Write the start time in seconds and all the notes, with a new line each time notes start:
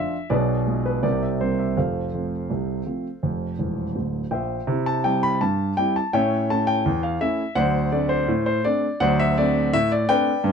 Already playing: F3 D4 F4 E5
0.30 B1 B2 G#4 B4 D5
0.67 G#3 B3 F4
0.86 B4
1.03 C2 C3 G4 A#4 D5
1.23 E5
1.41 G3 A#3 C4 C5
1.59 E5
1.77 F1 F2 A4 C5 F5
2.14 F3 A3 C4
2.50 C2 C3
2.86 F3 A3 C4
3.23 F1 F2
3.59 E1 E2
3.95 D1 D2
4.31 A#1 C5 E5 G5
4.67 C3 E4
4.86 A5
5.04 G3 C4 E4 G5
5.23 B5
5.41 G2 A5
5.77 G3 C4 E4 G5
5.96 A5
6.13 A2 C#4 C#5 E5 G5
6.50 A3 C#4 E4 A5
6.67 G5
6.86 E2
7.03 F5
7.21 A3 C#4 E4 E5
7.55 D2 F#3 C5 D5 F#5
7.92 A3 C4 D4 D5
8.09 C5
8.28 A2
8.46 C5
8.64 A3 C4 D4 D5
9.00 D2 F#3 C5 D5 F#5
9.20 E5
9.38 A3 C4 D4 D5
9.73 A2 E5
9.92 D5
10.09 A3 C4 D4 B4 D5 G5
10.44 G2 B3